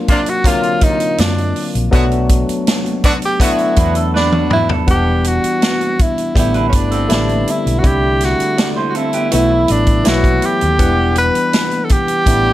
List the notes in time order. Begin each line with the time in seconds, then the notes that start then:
Already playing: F#3 A#3 C4 D4 F4
0.08 C3 A#3 D4 F4, kick, closed hi-hat
0.26 F#4, closed hi-hat
0.44 C3 D3 F#3 A#3 C4 F4, kick, closed hi-hat
0.63 closed hi-hat
0.81 D#4, kick, closed hi-hat
1.00 closed hi-hat
1.18 F#2 D4, snare, closed hi-hat
1.38 closed hi-hat
1.56 open hi-hat
1.75 A#1, closed hi-hat
1.91 B1 D3 F#3 A3 B3 D4 F#4, kick, closed hi-hat
2.12 closed hi-hat
2.29 kick, closed hi-hat
2.49 muted fingered electric bass stroke, closed hi-hat
2.67 snare, closed hi-hat
2.86 closed hi-hat
3.04 D3 B3 D4 F#4, kick, closed hi-hat
3.22 G4, closed hi-hat
3.40 D3 F#3 A3 B3 D4 E4 F#4, kick, closed hi-hat
3.58 closed hi-hat
3.76 E2 D4 B4, kick, closed hi-hat
3.95 A4, closed hi-hat
4.14 D4 B4, snare
4.32 F#4 D5, high tom
4.51 D4 E4 B4, mid tom
4.69 A4, floor tom
4.86 E1 E3 G3 B3 D4 F#5, kick, closed hi-hat
4.90 G4
5.24 F#4, closed hi-hat
5.44 muted fingered electric bass stroke, closed hi-hat
5.62 snare, closed hi-hat
5.81 closed hi-hat
5.99 E4, kick, closed hi-hat
6.18 closed hi-hat
6.35 A1 D3 G3 A3 B3 D4 G4, kick, closed hi-hat
6.39 E4
6.54 D4 B4, closed hi-hat
6.69 C#4, closed hi-hat
6.73 G1 D4, kick
6.91 C4 A4, closed hi-hat
7.08 A1 D3 G3 A3 E4 B4, snare, closed hi-hat
7.14 D4
7.29 closed hi-hat
7.48 E4, closed hi-hat
7.66 B1, closed hi-hat
7.79 D3 F#4
7.83 C2 G3 A3 C4 E4 G4, kick, closed hi-hat
8.21 F#4, snare, closed hi-hat
8.40 muted fingered electric bass stroke, closed hi-hat
8.58 F#4 D5, snare, closed hi-hat
8.76 E4 C5
8.89 F#4
8.95 C4 E4 A4, closed hi-hat
9.13 B3 G4, closed hi-hat
9.31 B1 E3 F#3 A3 B3 D#4 E4 F#4, closed hi-hat
9.39 E4
9.50 E4
9.68 A1 D4, closed hi-hat
9.86 kick, closed hi-hat
10.04 B1 E3 F#3 A3 B3 E4 F#4, snare, closed hi-hat
10.24 kick, closed hi-hat
10.42 G4, closed hi-hat
10.61 D#2, closed hi-hat
10.79 E1 E3 F#3 B3 D4 F#5, kick, closed hi-hat
10.85 G3
11.16 B4, closed hi-hat
11.35 muted fingered electric bass stroke, closed hi-hat
11.53 snare, closed hi-hat
11.71 closed hi-hat
11.85 A4
11.89 G4, kick, closed hi-hat
12.08 closed hi-hat
12.26 A1 G3 A3 B3 D4 E4, kick, closed hi-hat